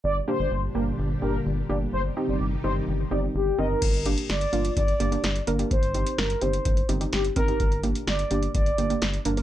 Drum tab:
CC |----------------|----------------|x---------------|----------------|
HH |----------------|----------------|xxxxxxxxxxxxxxxx|xxxxxxxxxxxxxxxx|
SD |----------------|----------------|----o-------o---|----o-------o---|
BD |----------------|----------------|o-------o-------|o-------o-----o-|

CC |----------------|
HH |xxxxxxxxxxxxxxxx|
SD |----o-------o---|
BD |o-------o-------|